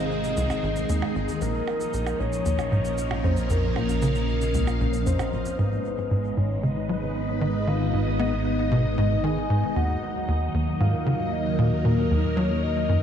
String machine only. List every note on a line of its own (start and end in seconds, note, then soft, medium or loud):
0.00 1.41 D#3 medium
0.00 1.41 G#3 medium
0.00 1.41 C4 medium
0.00 2.40 G#4 medium
0.00 1.41 C5 medium
1.42 5.59 F3 medium
1.69 5.59 A#3 medium
2.02 7.18 C#4 medium
2.60 5.59 A#4 medium
3.29 6.66 F5 medium
5.59 9.76 G#3 medium
5.72 13.03 D#4 medium
5.98 13.03 D#5 medium
6.06 9.76 B3 medium
6.55 9.76 B4 medium
9.76 13.03 F#3 medium
9.99 13.03 A#3 medium
10.70 13.03 A#4 medium